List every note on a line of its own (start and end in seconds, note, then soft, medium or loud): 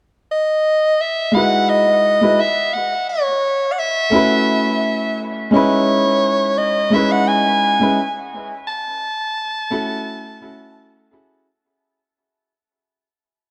0.31 1.02 D#5 medium
1.01 1.36 E5 medium
1.32 2.17 G#3 medium
1.32 2.18 D#4 medium
1.32 2.19 E4 medium
1.32 1.71 F#5 medium
1.36 2.19 F#4 medium
1.36 2.20 B4 medium
1.69 2.41 D#5 medium
2.21 2.38 G#3 medium
2.21 2.38 D#4 medium
2.21 2.38 E4 medium
2.21 2.39 F#4 medium
2.21 2.39 B4 medium
2.40 2.75 E5 medium
2.74 3.08 F#5 medium
3.09 3.74 C#5 medium
3.72 3.81 F#5 medium
3.79 5.27 E5 loud
4.10 5.48 A3 medium
4.10 5.48 C#4 medium
4.10 5.49 E4 medium
4.14 5.50 F#4 medium
4.14 5.50 B4 loud
5.51 6.88 G#3 medium
5.51 6.88 C#4 medium
5.51 6.89 D#4 medium
5.51 6.59 C#5 medium
5.55 6.90 E4 medium
5.55 6.90 B4 loud
6.58 6.95 D#5 medium
6.90 7.76 G#3 medium
6.90 7.76 C#4 medium
6.90 7.77 D#4 medium
6.90 7.78 E4 medium
6.90 7.13 E5 medium
6.96 7.78 B4 medium
7.12 7.29 F#5 loud
7.28 8.32 G#5 loud
7.80 7.96 G#3 medium
7.80 7.96 C#4 medium
7.80 7.97 D#4 medium
7.80 7.97 E4 medium
7.80 7.98 B4 medium
8.67 11.07 A5 loud
9.70 10.38 A3 medium
9.70 10.38 C#4 medium
9.70 10.38 E4 medium
9.70 10.39 F#4 medium
9.70 10.39 A4 loud
10.41 11.07 A3 medium
10.41 11.07 C#4 medium
10.41 11.08 E4 medium
10.41 11.08 F#4 medium
10.41 11.08 A4 medium
11.11 11.44 C#4 medium
11.11 11.45 E4 medium
11.11 11.45 F#4 medium
11.11 11.44 G#4 medium
11.11 11.46 A4 medium